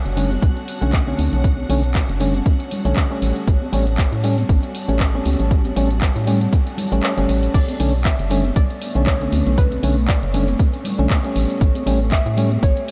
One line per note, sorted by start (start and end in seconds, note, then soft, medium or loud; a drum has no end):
0.00 3.18 C#4 medium
0.00 7.55 F#4 medium
0.00 7.50 C#5 medium
0.00 7.56 F#5 medium
0.00 3.18 A5 medium
0.06 0.38 F#1 loud
0.06 closed hi-hat soft
0.17 0.30 D3 medium
0.17 0.30 A3 medium
0.17 0.30 C#4 medium
0.17 open hi-hat loud
0.17 low conga medium
0.31 closed hi-hat soft
0.31 high conga medium
0.42 0.53 B1 loud
0.42 kick loud
0.42 closed hi-hat medium
0.56 closed hi-hat soft
0.68 open hi-hat loud
0.81 1.14 B1 medium
0.81 1.04 D3 medium
0.81 1.04 A3 medium
0.81 1.04 C#4 medium
0.81 closed hi-hat soft
0.93 kick loud
0.93 clap loud
0.93 closed hi-hat medium
1.06 1.66 D3 medium
1.06 1.67 A3 medium
1.06 1.67 C#4 medium
1.06 high conga medium
1.18 1.29 D2 loud
1.18 open hi-hat loud
1.18 high conga medium
1.33 1.65 B1 medium
1.33 closed hi-hat medium
1.44 kick loud
1.44 closed hi-hat medium
1.58 high conga medium
1.69 2.03 B1 medium
1.69 1.82 D3 medium
1.69 1.83 A3 medium
1.69 1.83 C#4 loud
1.69 open hi-hat loud
1.84 closed hi-hat soft
1.95 kick loud
1.95 clap loud
1.95 closed hi-hat medium
2.09 2.41 F#1 loud
2.09 closed hi-hat soft
2.20 2.33 D3 medium
2.20 2.33 A3 medium
2.20 2.34 C#4 medium
2.20 open hi-hat loud
2.20 low conga medium
2.34 closed hi-hat soft
2.34 high conga medium
2.46 kick loud
2.46 closed hi-hat medium
2.60 closed hi-hat soft
2.71 open hi-hat loud
2.71 low conga medium
2.85 2.94 B1 medium
2.85 3.07 D3 medium
2.85 3.07 A3 medium
2.85 3.08 C#4 medium
2.85 closed hi-hat medium
2.96 kick loud
2.96 clap loud
2.96 closed hi-hat medium
3.10 3.70 G3 medium
3.10 3.70 A3 medium
3.10 3.71 C#4 medium
3.22 3.32 A1 medium
3.22 7.50 G3 medium
3.22 7.50 A5 medium
3.22 open hi-hat loud
3.36 closed hi-hat medium
3.47 3.58 A1 loud
3.47 kick loud
3.47 closed hi-hat medium
3.62 high conga medium
3.72 4.06 A1 loud
3.72 3.86 G3 medium
3.72 3.86 A3 medium
3.72 3.86 C#4 loud
3.72 open hi-hat loud
3.87 closed hi-hat medium
3.98 kick loud
3.98 clap loud
3.98 closed hi-hat medium
4.12 4.44 A2 medium
4.12 closed hi-hat soft
4.23 4.37 G3 medium
4.23 4.37 A3 medium
4.23 4.37 C#4 medium
4.23 open hi-hat loud
4.23 low conga medium
4.38 closed hi-hat medium
4.38 high conga medium
4.49 4.60 A1 medium
4.49 kick loud
4.49 closed hi-hat medium
4.63 closed hi-hat soft
4.75 open hi-hat loud
4.88 5.21 A1 medium
4.88 5.11 G3 medium
4.88 5.11 A3 medium
4.88 5.11 C#4 medium
4.88 closed hi-hat medium
5.00 kick loud
5.00 clap loud
5.00 closed hi-hat medium
5.13 5.73 G3 medium
5.13 5.74 A3 medium
5.13 5.74 C#4 medium
5.13 high conga medium
5.25 5.36 C#2 loud
5.25 open hi-hat loud
5.25 high conga medium
5.40 5.72 A1 medium
5.40 closed hi-hat medium
5.51 kick loud
5.51 closed hi-hat medium
5.65 closed hi-hat soft
5.65 high conga medium
5.76 6.10 A1 loud
5.76 5.89 G3 loud
5.76 5.89 A3 medium
5.76 5.90 C#4 loud
5.76 open hi-hat loud
5.90 closed hi-hat medium
6.01 kick loud
6.01 clap loud
6.01 closed hi-hat medium
6.16 6.48 A2 medium
6.16 closed hi-hat soft
6.27 6.40 G3 medium
6.27 6.40 A3 medium
6.27 6.40 C#4 medium
6.27 open hi-hat loud
6.27 low conga medium
6.41 closed hi-hat medium
6.41 high conga medium
6.53 kick loud
6.53 closed hi-hat medium
6.67 closed hi-hat soft
6.78 open hi-hat loud
6.78 low conga loud
6.92 7.00 A1 medium
6.92 7.14 G3 medium
6.92 7.14 A3 medium
6.92 7.14 C#4 medium
6.92 closed hi-hat medium
7.03 clap loud
7.03 closed hi-hat medium
7.17 7.26 G1 medium
7.17 7.53 G3 medium
7.17 7.53 A3 medium
7.17 7.53 C#4 medium
7.17 closed hi-hat soft
7.29 7.48 A1 medium
7.29 open hi-hat loud
7.43 closed hi-hat medium
7.54 7.65 B1 loud
7.54 11.32 A3 medium
7.54 11.32 B3 medium
7.54 8.07 D5 loud
7.54 12.91 C#6 medium
7.54 kick loud
7.54 closed hi-hat medium
7.54 crash loud
7.68 closed hi-hat medium
7.68 high conga medium
7.79 8.13 B1 medium
7.79 7.93 D3 medium
7.79 7.93 A3 medium
7.79 7.93 C#4 loud
7.79 open hi-hat loud
8.05 8.58 E5 loud
8.05 kick loud
8.05 clap loud
8.05 closed hi-hat medium
8.19 8.51 F#1 loud
8.19 closed hi-hat soft
8.30 8.43 D3 medium
8.30 8.44 A3 medium
8.30 8.44 C#4 loud
8.30 open hi-hat loud
8.30 low conga medium
8.45 closed hi-hat soft
8.45 high conga medium
8.56 8.66 B1 loud
8.56 9.08 D5 loud
8.56 kick loud
8.56 closed hi-hat medium
8.70 closed hi-hat soft
8.82 open hi-hat loud
8.95 9.27 B1 medium
8.95 9.17 D3 medium
8.95 9.18 A3 medium
8.95 9.18 C#4 medium
8.95 closed hi-hat soft
9.07 9.54 C#5 loud
9.07 kick loud
9.07 clap loud
9.07 closed hi-hat medium
9.20 9.80 D3 medium
9.20 9.80 A3 medium
9.20 9.81 C#4 medium
9.20 closed hi-hat soft
9.20 high conga medium
9.32 9.43 D2 loud
9.32 open hi-hat loud
9.32 high conga medium
9.46 9.78 B1 medium
9.46 closed hi-hat medium
9.58 10.10 B4 loud
9.58 kick loud
9.58 closed hi-hat medium
9.72 closed hi-hat medium
9.72 high conga medium
9.83 10.17 B1 medium
9.83 9.96 D3 medium
9.83 9.96 A3 medium
9.83 9.96 C#4 loud
9.83 open hi-hat loud
10.08 10.81 D5 medium
10.08 kick loud
10.08 clap loud
10.08 closed hi-hat medium
10.23 10.55 F#1 loud
10.23 closed hi-hat soft
10.34 10.47 D3 medium
10.34 10.47 A3 medium
10.34 10.47 C#4 loud
10.34 open hi-hat loud
10.34 low conga medium
10.48 closed hi-hat soft
10.48 high conga medium
10.59 kick loud
10.59 closed hi-hat medium
10.73 closed hi-hat soft
10.85 open hi-hat loud
10.85 low conga medium
10.98 11.07 B1 medium
10.98 11.21 D3 medium
10.98 11.21 A3 medium
10.98 11.21 C#4 medium
10.98 closed hi-hat soft
11.10 kick loud
11.10 clap loud
11.10 closed hi-hat medium
11.23 11.83 G3 medium
11.23 11.84 A3 medium
11.23 11.84 C#4 medium
11.23 closed hi-hat soft
11.36 11.46 A1 medium
11.36 12.91 A3 medium
11.36 12.91 G4 medium
11.36 open hi-hat loud
11.50 closed hi-hat medium
11.61 11.71 A1 loud
11.61 kick loud
11.61 closed hi-hat medium
11.75 closed hi-hat soft
11.75 high conga medium
11.86 12.20 A1 loud
11.86 11.99 G3 medium
11.86 12.00 A3 medium
11.86 12.00 C#4 loud
11.86 open hi-hat loud
12.12 12.59 E5 loud
12.12 kick loud
12.12 clap loud
12.12 closed hi-hat medium
12.26 12.58 A2 loud
12.26 closed hi-hat soft
12.37 12.50 G3 medium
12.37 12.50 A3 medium
12.37 12.51 C#4 loud
12.37 open hi-hat loud
12.37 low conga medium
12.52 closed hi-hat soft
12.52 high conga medium
12.63 12.73 A1 loud
12.63 12.91 C#5 loud
12.63 kick loud
12.63 closed hi-hat medium
12.77 closed hi-hat soft